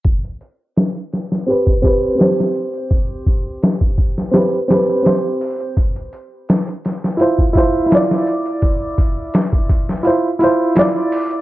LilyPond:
<<
  \new Staff \with { instrumentName = "Upright piano" } { \time 4/4 \key c \major \tempo 4 = 84 r2 <c' g' b'>8 <c' g' b'>8 <c' g' c''>4~ | <c' g' c''>2 <c' g' b'>8 <c' g' b'>8 <c' g' c''>4 | r2 <e' f' c''>8 <e' f' c''>8 <e' f' d''>4~ | <e' f' d''>2 <e' f' c''>8 <e' f' c''>8 <e' f' d''>4 | }
  \new DrumStaff \with { instrumentName = "Drums" } \drummode { \time 4/4 <hh bd>16 hh16 hh8 <hh sn>16 hh16 <hh sn>16 sn16 hh16 bd16 <hh bd>8 <hh sn>16 sn16 hh16 hh16 | <hh bd>8 <hh bd>8 <hh sn>16 bd16 <hh bd>16 sn16 <hh sn>8 <hh sn>8 <hh sn>8 hho16 hh16 | <hh bd>16 hh16 hh8 <hh sn>16 hh16 <hh sn>16 sn16 hh16 bd16 <hh bd>8 <hh sn>16 sn16 hh16 hh16 | <hh bd>8 <hh bd>8 <hh sn>16 bd16 <hh bd>16 sn16 hh8 hh8 <hh sn>8 hho16 hh16 | }
>>